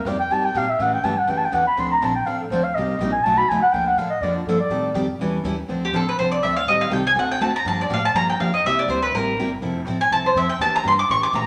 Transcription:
0.05 upright bass F2, steel-string acoustic guitar C3 G3 A#3 D#4 G4, clarinet D5
0.19 clarinet G5
0.29 upright bass G2, steel-string acoustic guitar C3 G3 A#3 D#4 G4, clarinet A5
0.45 clarinet G5
0.54 upright bass A#2, steel-string acoustic guitar C3 G3 A#3 D#4 G4, clarinet F5
0.69 clarinet E5
0.79 upright bass A2, steel-string acoustic guitar C#3 E3 A3 C#4 G4, clarinet F#5
0.94 clarinet G5
1.03 upright bass G2, steel-string acoustic guitar C#3 E3 A3 C#4 G4, clarinet A5
1.18 clarinet F#5
1.27 upright bass F#2, steel-string acoustic guitar C#3 E3 A3 C#4 G4, clarinet G5
1.38 clarinet A5
1.45 clarinet G5
1.52 upright bass E2, steel-string acoustic guitar C#3 E3 A3 C#4 G4, clarinet F#5
1.67 clarinet B5
1.77 upright bass D2, steel-string acoustic guitar D3 F3 C4 D4 A4, clarinet C6
1.92 clarinet A#5
2.01 upright bass A#1, steel-string acoustic guitar D3 F3 C4 D4 A4, clarinet A5
2.15 clarinet G5
2.25 upright bass A1, steel-string acoustic guitar D3 F3 C4 D4 A4, clarinet F5
2.40 clarinet A4
2.50 upright bass D2, steel-string acoustic guitar D3 F3 C4 D4 A4, clarinet C5
2.64 clarinet F5
2.75 upright bass C2, steel-string acoustic guitar C3 G3 A#3 D#4 G4, clarinet D#5
2.99 upright bass A#1, steel-string acoustic guitar C3 G3 A#3 D#4 G4
3.12 clarinet G#5
3.24 upright bass B1, steel-string acoustic guitar B2 F#3 A3 D#4 F#4, clarinet A5
3.37 clarinet B5
3.48 upright bass C#2, steel-string acoustic guitar B2 F#3 A3 D#4 F#4, clarinet G#5
3.62 clarinet F#5, muted upright bass stroke
3.72 upright bass D2, steel-string acoustic guitar D3 F3 A#3 D4 A4, clarinet G5
3.87 clarinet F#5
3.96 upright bass A2, steel-string acoustic guitar D3 F3 A#3 D4 A4, clarinet F5
4.10 clarinet D#5
4.21 upright bass F2, steel-string acoustic guitar D3 F3 A#3 D4 A4, clarinet D5
4.36 clarinet F4
4.45 upright bass G2, steel-string acoustic guitar D3 F3 A#3 D4 A4, clarinet A4
4.60 clarinet D5
4.69 upright bass A2, steel-string acoustic guitar D#3 G3 C4 G4 A4
4.94 upright bass F2, steel-string acoustic guitar D#3 G3 C4 G4 A4
5.19 upright bass E2, steel-string acoustic guitar E3 G3 C#4 E4 A4
5.43 upright bass D#2, steel-string acoustic guitar E3 G3 C#4 E4 A4
5.68 upright bass D2, steel-string acoustic guitar D3 F3 C4 D4 A4
5.85 mandolin G4
5.92 upright bass A1, steel-string acoustic guitar D3 F3 C4 D4 A4, mandolin A4
6.09 mandolin B4
6.17 upright bass C2, steel-string acoustic guitar D3 F3 C4 D4 A4, mandolin C5
6.32 mandolin D5
6.42 upright bass D2, steel-string acoustic guitar D3 F3 C4 D4 A4, mandolin E5
6.56 mandolin F5
6.66 upright bass A1, steel-string acoustic guitar D#3 G3 C4 G4 A4, mandolin D#5
6.81 mandolin F5
6.90 upright bass C2, steel-string acoustic guitar D#3 G3 C4 G4 A4, mandolin G5
7.07 mandolin G#5
7.15 upright bass D2, steel-string acoustic guitar D3 A3 C4 F#4 A4
7.19 mandolin F#5
7.31 mandolin G5
7.40 upright bass D#2, steel-string acoustic guitar D3 A3 C4 F#4 A4, mandolin A5
7.56 mandolin A#5
7.65 upright bass G2, steel-string acoustic guitar D3 F3 A#3 D4 G4, mandolin A5
7.81 mandolin D5
7.90 upright bass A2, steel-string acoustic guitar D3 F3 A#3 D4 G4, mandolin F5
8.05 mandolin A5
8.13 upright bass G2, steel-string acoustic guitar D3 F3 A#3 D4 G4, mandolin A#5
8.30 mandolin G5
8.39 upright bass F2, steel-string acoustic guitar D3 F3 A#3 D4 G4, mandolin F5
8.54 mandolin D#5
8.64 upright bass C2, steel-string acoustic guitar C3 G3 A#3 E4 G4, mandolin E5
8.79 mandolin D5
8.88 upright bass D2, steel-string acoustic guitar C3 G3 A#3 E4 G4, mandolin C5
9.02 mandolin B4
9.12 upright bass A1, steel-string acoustic guitar C3 G3 A#3 E4, mandolin A#4
9.16 steel-string acoustic guitar G4
9.37 upright bass G1, steel-string acoustic guitar C3 G3 A#3 E4 G4
9.61 upright bass F1, steel-string acoustic guitar F3 C4 E4 A4
9.85 upright bass A1, steel-string acoustic guitar F3 C4 E4 A4
10.01 mandolin G#5
10.10 upright bass C2, steel-string acoustic guitar F3 C4 E4 A4, mandolin A5
10.26 mandolin C5
10.34 upright bass F2, steel-string acoustic guitar F3 C4 E4 A4, mandolin E5
10.49 mandolin G5
10.58 upright bass E2, steel-string acoustic guitar E3 A#3 D4 G4, mandolin A5
10.72 mandolin A#5, muted upright bass stroke
10.83 upright bass G2, steel-string acoustic guitar E3 A#3 D4 G4
10.88 mandolin C6
10.99 mandolin D6
11.09 upright bass A2, steel-string acoustic guitar C#3 E3 A3 C#4 G4, mandolin C#6
11.23 mandolin D6
11.33 upright bass A#2, steel-string acoustic guitar C#3 E3 A3 C#4 G4, mandolin A#5

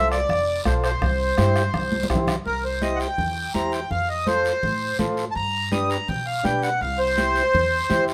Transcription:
Already playing: upright bass C2, transistor combo organ F4 A4 C5
0.12 accordion D5, bombo rim, short guiro
0.29 upright bass F1, bombo rim, high conga, low conga, long guiro
0.65 upright bass B1, transistor combo organ F4 A4 C5, accordion C5, bombo low, bombo rim, high conga, short guiro
0.84 accordion C5, bombo rim, short guiro
1.02 upright bass C2, bombo low, bombo rim, high conga, low conga, long guiro
1.38 upright bass G2, transistor combo organ E4 G4 C5, bombo rim, high conga, short guiro
1.56 bombo rim, short guiro
1.74 upright bass C2, bombo rim, high conga, low conga, long guiro
1.92 high conga
2.03 high conga
2.10 upright bass C2, transistor combo organ E4 G4 C5, bombo low, bombo rim, short guiro
2.15 low conga
2.27 bombo rim, low conga, short guiro
2.45 upright bass C2, accordion A#4, high conga, long guiro
2.64 accordion C5
2.82 transistor combo organ E4 G4 C5, accordion D#5, high conga, short guiro
2.96 accordion F#5
3.00 accordion G5, short guiro
3.18 upright bass E2, high conga, low conga, long guiro
3.54 upright bass E2, transistor combo organ E4 G4 C5, accordion A#5, high conga, short guiro
3.72 accordion G5, short guiro
3.91 upright bass F2, accordion F5, high conga, low conga, long guiro
4.09 accordion D#5
4.27 transistor combo organ F4 A4 C5, accordion C5, high conga, short guiro
4.45 short guiro
4.63 upright bass A2, high conga, low conga, long guiro
4.99 upright bass A2, transistor combo organ F4 A4 C5, high conga, low conga, short guiro
5.17 short guiro
5.31 accordion A5
5.35 upright bass G2, accordion A#5, high conga, long guiro
5.72 transistor combo organ D4 G4 B4, accordion D#6, high conga, short guiro
5.90 accordion A#5, short guiro
6.08 upright bass B2, accordion G5, high conga, low conga, long guiro
6.26 accordion F5
6.43 upright bass B2, transistor combo organ D4 G4 B4, accordion G5, high conga, short guiro
6.63 accordion F#5, short guiro
6.81 upright bass C2, accordion F5, high conga, long guiro
6.99 accordion C5
7.17 transistor combo organ E4 G4 C5, high conga, short guiro
7.36 short guiro
7.53 upright bass E2, high conga, low conga, long guiro
7.89 upright bass E2, transistor combo organ E4 G4 C5, high conga, low conga, short guiro
8.08 short guiro

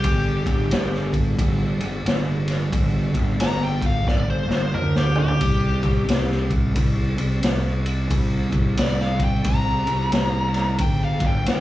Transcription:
Already playing: lead electric guitar G4
0.04 fingered electric bass G1, kick, ride
0.46 fingered electric bass G1, kick, ride
0.71 fingered electric bass G1, snare, ride
0.95 snare
1.13 kick, ride
1.39 fingered electric bass G1, kick, ride
1.80 fingered electric bass G1, ride
2.05 fingered electric bass G1, snare, ride
2.48 snare, ride
2.73 fingered electric bass G1, kick, ride
3.14 fingered electric bass G1, kick, ride
3.40 fingered electric bass G1, lead electric guitar A#5, snare, ride
3.63 lead electric guitar G5
3.82 kick, ride
3.86 lead electric guitar F5
4.07 fingered electric bass G1, lead electric guitar D5, kick, snare
4.30 lead electric guitar C5
4.48 fingered electric bass G1, snare
4.53 lead electric guitar C5
4.73 fingered electric bass D2, lead electric guitar A#4, mid tom
4.96 lead electric guitar G4, snare
5.15 lead electric guitar G4, floor tom
5.28 floor tom
5.41 fingered electric bass C2, kick, ride
5.83 fingered electric bass C2, kick, ride
6.07 fingered electric bass C2, snare, ride
6.31 snare
6.50 kick, ride
6.76 fingered electric bass C2, kick, ride
7.18 fingered electric bass C2, ride
7.43 fingered electric bass C2, snare, ride
7.86 ride
8.10 fingered electric bass C2, kick, ride
8.52 fingered electric bass C2, kick, ride
8.77 fingered electric bass C2, lead electric guitar D5, snare, ride
9.00 lead electric guitar F5, snare
9.20 kick, ride
9.24 lead electric guitar G5
9.44 fingered electric bass C2, lead electric guitar A#5, kick, ride
9.87 fingered electric bass C2, ride
10.12 fingered electric bass C2, snare, ride
10.54 snare, ride
10.78 fingered electric bass G1, lead electric guitar G5, kick, ride
11.04 lead electric guitar F5
11.20 fingered electric bass G1, kick, ride
11.27 lead electric guitar G5
11.46 fingered electric bass G1, lead electric guitar G5, snare, ride

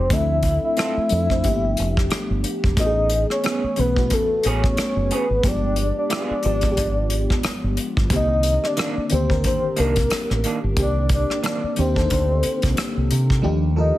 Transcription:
Already playing: fm electric piano F3 G#3 C4 D#4 G4, soft synth lead C5
0.10 fingered electric bass D2, fm electric piano F3 A3 C4 D4 A4, soft synth lead E5, kick, closed hi-hat
0.43 kick, closed hi-hat
0.64 soft synth lead E5
0.77 clean electric guitar C4 F4 A4, cross-stick, closed hi-hat
0.97 muted fingered electric bass stroke
1.09 fingered electric bass F2, fm electric piano F3 A3 C4 D4 A4, closed hi-hat
1.29 fm electric piano F3 A3 C4 D4 C5, kick, cross-stick
1.43 fingered electric bass G1, fm electric piano F3 A3 A#3 D4 G4, kick, closed hi-hat
1.51 fm electric piano B3
1.77 fingered electric bass F1, closed hi-hat
1.97 kick, cross-stick
2.10 muted fingered electric bass stroke, cross-stick, closed hi-hat
2.30 fingered electric bass G1
2.44 closed hi-hat
2.64 fingered electric bass E1, kick
2.77 fingered electric bass A1, fm electric piano E3 A3 B3 C#4 F#4, soft synth lead D#5, kick, closed hi-hat
2.86 fm electric piano G#4
3.10 closed hi-hat
3.30 soft synth lead C#5, cross-stick
3.44 clean electric guitar B3 C#4 G#4, cross-stick, closed hi-hat
3.64 muted fingered electric bass stroke
3.76 fingered electric bass B1, fm electric piano E3 A3 B3 C#4 B4, soft synth lead B4, closed hi-hat
3.96 fm electric piano E3 A3 B3 C#4 F#4, kick
4.10 soft synth lead A4, muted clean electric guitar stroke, kick, closed hi-hat
4.43 fingered electric bass A1, clean electric guitar B3 C#4 G#4, soft synth lead C#5, closed hi-hat
4.64 kick, cross-stick
4.77 cross-stick, closed hi-hat
4.96 fingered electric bass F#1
5.11 clean electric guitar B3 C#4 G#4, closed hi-hat
5.15 soft synth lead B4
5.30 fingered electric bass G#1
5.43 fingered electric bass G1, fm electric piano F3 G#3 B3 D4 G4, kick, closed hi-hat
5.47 soft synth lead D5
5.76 closed hi-hat
5.98 soft synth lead D5
6.10 clean electric guitar B3 F4 G#4, cross-stick, closed hi-hat
6.30 muted fingered electric bass stroke
6.43 fingered electric bass G#1, fm electric piano F3 G#3 B3 D4 G4, closed hi-hat
6.61 fm electric piano F3 G#3 B3 D4 F4, kick, cross-stick, closed hi-hat
6.72 fm electric piano G4
6.77 kick, closed hi-hat
7.10 closed hi-hat
7.30 kick, cross-stick
7.43 muted fingered electric bass stroke, cross-stick, closed hi-hat
7.64 fingered electric bass G1
7.77 closed hi-hat
7.97 fingered electric bass G1, kick
8.10 fingered electric bass C2, fm electric piano D3 D#3 A#3 C4 G4, kick, closed hi-hat
8.15 soft synth lead D#5
8.43 closed hi-hat
8.64 soft synth lead D5, cross-stick
8.77 clean electric guitar D#3 A#3 D4, cross-stick, closed hi-hat
8.97 muted fingered electric bass stroke
9.10 fingered electric bass D2, fm electric piano D#3 A#3 C4 D4 G4, closed hi-hat
9.14 soft synth lead C5
9.29 fm electric piano D#3 A#3 C4 D4 A#4, kick
9.44 soft synth lead C5, muted clean electric guitar stroke, kick, closed hi-hat
9.76 fingered electric bass C2, clean electric guitar D#3 A#3 D4, soft synth lead A#4, closed hi-hat
9.96 kick, closed hi-hat
10.10 muted fingered electric bass stroke, cross-stick, closed hi-hat
10.30 fingered electric bass A1, cross-stick
10.44 clean electric guitar D#3 A#3 D4, closed hi-hat
10.64 fingered electric bass G1
10.77 fingered electric bass C2, fm electric piano D#3 A#3 C4 D4 G4, kick, closed hi-hat
10.82 soft synth lead D5
11.09 kick, closed hi-hat
11.14 soft synth lead D5
11.30 cross-stick
11.43 clean electric guitar D#3 A#3 D4, soft synth lead D5, cross-stick, closed hi-hat
11.64 muted fingered electric bass stroke
11.76 fingered electric bass D#2, fm electric piano D#3 A#3 C4 D4 G4, soft synth lead C5, closed hi-hat
11.94 fm electric piano D3 A#3 C4 D4 A4, kick
12.01 fm electric piano D#4
12.10 fingered electric bass D2, kick, closed hi-hat
12.43 muted fingered electric bass stroke, closed hi-hat
12.62 fingered electric bass C2, kick, closed hi-hat
12.77 cross-stick, closed hi-hat
12.97 fingered electric bass C2
13.11 fingered electric bass C3, closed hi-hat
13.30 kick
13.42 fingered electric bass D#2, fm electric piano F3 A3 D4 D#4 G4
13.76 fm electric piano F3 D#4 F4 A4 A#4, soft synth lead D#5

